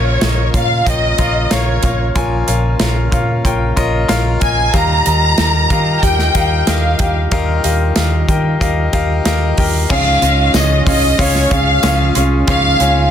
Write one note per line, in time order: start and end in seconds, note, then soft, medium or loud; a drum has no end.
0.00 0.16 A#1 medium
0.00 0.50 A#2 medium
0.00 4.70 C#3 medium
0.00 0.50 F3 medium
0.00 4.70 A#3 soft
0.00 0.22 F4 medium
0.00 9.87 F4 medium
0.00 0.22 A#4 medium
0.00 0.22 C#5 medium
0.00 0.51 C#5 medium
0.00 0.55 F5 medium
0.21 0.49 A#1 medium
0.21 0.52 F4 medium
0.21 0.52 A#4 medium
0.21 0.53 C#5 medium
0.21 0.53 D#5 medium
0.21 snare medium
0.21 closed hi-hat medium
0.54 0.81 A#2 medium
0.54 0.84 F4 medium
0.54 0.84 A#4 medium
0.54 0.85 C#5 medium
0.54 0.85 F5 medium
0.54 0.87 F5 medium
0.54 kick medium
0.54 closed hi-hat medium
0.86 1.13 A#1 medium
0.86 1.17 F4 medium
0.86 1.17 A#4 medium
0.86 1.17 C#5 medium
0.86 1.51 D#5 medium
0.86 1.17 G5 medium
0.86 kick medium
0.86 closed hi-hat medium
1.18 1.45 A#1 medium
1.18 1.49 F4 medium
1.18 1.49 A#4 medium
1.18 1.49 C#5 medium
1.18 1.49 F5 medium
1.18 kick medium
1.18 closed hi-hat medium
1.51 1.78 A#1 medium
1.51 1.81 F4 medium
1.51 1.81 A#4 medium
1.51 1.82 C#5 medium
1.51 2.00 C#5 medium
1.51 1.82 F5 medium
1.51 snare medium
1.51 closed hi-hat medium
1.83 2.10 A#1 medium
1.83 2.14 F4 medium
1.83 2.14 A#4 medium
1.83 2.14 C#5 medium
1.83 2.14 F5 medium
1.83 kick medium
1.83 closed hi-hat medium
2.15 2.42 A#1 medium
2.15 3.08 A#2 medium
2.15 3.08 F3 medium
2.15 2.46 F4 loud
2.15 2.46 A#4 medium
2.15 2.46 C#5 medium
2.15 2.46 G#5 loud
2.15 kick medium
2.15 closed hi-hat medium
2.48 2.75 A#1 medium
2.48 2.78 F4 medium
2.48 2.78 A#4 medium
2.48 2.78 C#5 medium
2.48 2.79 F5 medium
2.48 closed hi-hat medium
2.80 3.07 A#1 medium
2.80 3.10 F4 medium
2.80 3.10 A#4 medium
2.80 3.11 C#5 medium
2.80 3.11 F5 medium
2.80 snare loud
2.80 closed hi-hat medium
3.12 3.39 A#2 medium
3.12 3.42 F4 medium
3.12 3.43 A#4 medium
3.12 3.43 C#5 medium
3.12 3.43 F5 medium
3.12 kick loud
3.12 closed hi-hat medium
3.45 3.71 A#1 medium
3.45 3.75 F4 medium
3.45 3.75 A#4 medium
3.45 3.75 C#5 medium
3.45 3.75 G5 medium
3.45 kick medium
3.45 closed hi-hat medium
3.76 4.03 A#1 medium
3.76 4.07 F4 loud
3.76 4.07 A#4 medium
3.76 4.07 C#5 medium
3.76 4.08 D#5 loud
3.76 kick medium
3.76 closed hi-hat medium
4.08 4.36 A#1 medium
4.08 4.39 F4 loud
4.08 4.39 A#4 loud
4.08 4.40 C#5 medium
4.08 4.40 F5 loud
4.08 snare medium
4.08 closed hi-hat medium
4.41 4.68 A#1 medium
4.41 4.72 F4 medium
4.41 4.72 A#4 medium
4.41 4.72 C#5 medium
4.41 4.72 D#5 medium
4.41 4.72 G#5 medium
4.41 kick medium
4.41 closed hi-hat medium
4.73 5.00 D#2 medium
4.73 5.67 A#2 medium
4.73 9.86 D#3 medium
4.73 9.86 G3 medium
4.73 5.04 G4 medium
4.73 5.04 A#4 medium
4.73 5.04 D#5 medium
4.73 5.04 F5 loud
4.73 6.03 A#5 loud
4.73 kick medium
4.73 closed hi-hat medium
5.06 5.33 D#2 medium
5.06 5.36 G4 medium
5.06 5.36 A#4 medium
5.06 5.36 D#5 medium
5.06 5.37 G5 medium
5.06 closed hi-hat medium
5.38 5.65 D#2 medium
5.38 5.69 G4 medium
5.38 5.69 A#4 medium
5.38 5.69 D#5 medium
5.38 5.69 G5 medium
5.38 snare loud
5.38 closed hi-hat medium
5.70 5.97 D#3 medium
5.70 6.01 G4 medium
5.70 6.01 A#4 medium
5.70 6.01 D#5 medium
5.70 6.01 F5 medium
5.70 kick medium
5.70 closed hi-hat medium
6.03 6.29 D#2 medium
6.03 6.33 G4 medium
6.03 6.33 A#4 medium
6.03 6.33 D#5 medium
6.03 6.34 G5 medium
6.03 6.68 G5 medium
6.03 kick medium
6.03 closed hi-hat medium
6.19 snare soft
6.35 6.62 D#2 medium
6.35 6.65 G4 medium
6.35 6.66 A#4 medium
6.35 6.66 D#5 medium
6.35 6.66 F5 medium
6.35 kick medium
6.35 closed hi-hat medium
6.67 6.94 D#2 medium
6.67 6.98 G4 medium
6.67 6.98 A#4 medium
6.67 6.98 D#5 medium
6.67 7.16 F5 medium
6.67 6.98 G5 loud
6.67 snare medium
6.67 closed hi-hat loud
6.99 7.26 D#2 medium
6.99 7.30 G4 medium
6.99 7.30 A#4 medium
6.99 7.30 D#5 medium
6.99 7.30 G5 medium
6.99 kick medium
6.99 closed hi-hat medium
7.31 7.58 D#2 loud
7.31 8.25 A#2 medium
7.31 7.62 G4 loud
7.31 7.62 A#4 loud
7.31 7.62 D#5 loud
7.31 7.62 F5 loud
7.31 kick loud
7.31 closed hi-hat medium
7.64 7.91 D#2 medium
7.64 7.94 G4 medium
7.64 7.94 A#4 medium
7.64 7.94 D#5 medium
7.64 7.95 F5 medium
7.64 closed hi-hat medium
7.96 8.23 D#2 medium
7.96 8.26 G4 medium
7.96 8.27 A#4 medium
7.96 8.27 D#5 medium
7.96 8.27 F5 medium
7.96 snare loud
7.96 closed hi-hat medium
8.28 8.55 D#3 medium
8.28 8.59 G4 medium
8.28 8.59 A#4 medium
8.28 8.59 D#5 medium
8.28 8.59 G5 medium
8.28 kick medium
8.28 closed hi-hat medium
8.60 8.88 D#2 medium
8.60 8.91 G4 medium
8.60 8.91 A#4 medium
8.60 8.91 D#5 medium
8.60 8.91 F5 medium
8.60 kick medium
8.60 closed hi-hat medium
8.93 9.20 D#2 medium
8.93 9.23 G4 loud
8.93 9.24 A#4 medium
8.93 9.24 D#5 medium
8.93 9.24 F5 loud
8.93 kick medium
8.93 closed hi-hat medium
9.25 9.52 D#2 medium
9.25 9.56 G4 loud
9.25 9.56 A#4 loud
9.25 9.56 D#5 loud
9.25 9.56 F5 loud
9.25 snare loud
9.25 closed hi-hat loud
9.58 9.84 D#2 medium
9.58 9.88 G4 medium
9.58 9.88 A#4 medium
9.58 9.88 D#5 medium
9.58 9.88 G5 medium
9.58 kick medium
9.58 open hi-hat medium
9.89 10.17 C#2 loud
9.89 10.83 G#2 medium
9.89 10.22 C#3 medium
9.89 10.22 F3 medium
9.89 10.22 G#3 medium
9.89 12.46 G#3 medium
9.89 10.20 C#4 loud
9.89 10.22 C#4 medium
9.89 13.11 C#4 medium
9.89 10.20 F4 medium
9.89 13.11 F4 medium
9.89 10.21 F4 medium
9.89 10.21 G#4 medium
9.89 10.21 C#5 medium
9.89 10.20 C#5 medium
9.89 10.21 F5 loud
9.89 10.51 F5 loud
9.89 kick loud
9.89 crash medium
10.21 10.48 C#2 loud
10.21 10.53 G#3 medium
10.21 10.53 C#4 medium
10.21 10.54 C#4 soft
10.21 10.53 F4 medium
10.21 10.54 F4 medium
10.21 10.53 G#4 medium
10.21 10.54 C#5 medium
10.21 10.53 C#5 medium
10.21 10.53 D#5 medium
10.21 hi-hat pedal medium
10.21 open hi-hat medium
10.54 10.81 C#2 loud
10.54 10.86 C#3 medium
10.54 10.87 F3 medium
10.54 10.87 G#3 medium
10.54 10.85 C#4 medium
10.54 10.87 C#4 medium
10.54 10.85 F4 medium
10.54 10.86 F4 medium
10.54 10.85 G#4 medium
10.54 10.85 C#5 medium
10.54 10.85 D#5 medium
10.54 snare loud
10.54 hi-hat pedal medium
10.54 open hi-hat medium
10.54 tambourine loud
10.86 11.13 C2 medium
10.86 11.17 G#3 soft
10.86 11.17 C#4 medium
10.86 11.18 C#4 medium
10.86 11.17 F4 medium
10.86 11.19 F4 soft
10.86 11.17 G#4 medium
10.86 11.19 C#5 medium
10.86 11.17 C#5 medium
10.86 11.16 D#5 medium
10.86 11.17 F5 medium
10.86 kick loud
10.86 hi-hat pedal medium
10.86 open hi-hat medium
11.18 11.46 C#2 loud
11.18 11.51 G#3 medium
11.18 11.49 C#4 loud
11.18 11.51 C#4 medium
11.18 11.49 F4 medium
11.18 11.50 F4 medium
11.18 11.49 G#4 medium
11.18 11.51 C#5 medium
11.18 11.49 C#5 medium
11.18 11.50 F5 loud
11.18 kick medium
11.18 hi-hat pedal medium
11.18 open hi-hat medium
11.35 snare soft
11.50 11.78 C#2 loud
11.50 11.82 G#3 soft
11.50 11.81 C#4 medium
11.50 11.83 C#4 medium
11.50 11.81 F4 medium
11.50 11.83 F4 medium
11.50 11.82 G#4 medium
11.50 11.83 C#5 medium
11.50 11.82 C#5 medium
11.50 12.16 F5 loud
11.50 11.82 F5 medium
11.50 kick medium
11.50 hi-hat pedal medium
11.50 open hi-hat medium
11.83 12.10 C#2 loud
11.83 12.15 C#3 medium
11.83 12.16 F3 medium
11.83 12.16 G#3 medium
11.83 12.13 C#4 loud
11.83 12.16 C#4 medium
11.83 12.14 F4 medium
11.83 12.15 F4 medium
11.83 12.14 G#4 medium
11.83 12.14 C#5 medium
11.83 12.13 C#5 medium
11.83 12.14 F5 loud
11.83 snare loud
11.83 hi-hat pedal medium
11.83 open hi-hat loud
11.83 tambourine medium
12.14 12.42 C2 medium
12.14 12.47 G#3 medium
12.14 12.46 C#4 medium
12.14 12.48 C#4 soft
12.14 12.46 F4 medium
12.14 12.48 F4 medium
12.14 12.46 G#4 medium
12.14 12.47 C#5 medium
12.14 12.46 C#5 medium
12.14 12.46 F5 medium
12.14 hi-hat pedal medium
12.14 open hi-hat medium
12.47 12.74 C#2 loud
12.47 13.11 G#2 medium
12.47 12.80 C#3 medium
12.47 12.80 F3 medium
12.47 12.81 G#3 loud
12.47 13.11 A#3 medium
12.47 12.78 C#4 loud
12.47 12.81 C#4 medium
12.47 12.78 F4 medium
12.47 12.80 F4 medium
12.47 12.78 G#4 medium
12.47 12.78 C#5 medium
12.47 12.78 C#5 loud
12.47 12.78 F5 loud
12.47 13.09 F5 loud
12.47 kick loud
12.47 hi-hat pedal medium
12.47 open hi-hat medium
12.80 13.07 C#2 loud
12.80 13.11 G#3 soft
12.80 13.10 C#4 medium
12.80 13.11 C#4 medium
12.80 13.11 F4 medium
12.80 13.11 G#4 medium
12.80 13.11 C#5 medium
12.80 13.11 G#5 medium
12.80 hi-hat pedal medium
12.80 open hi-hat medium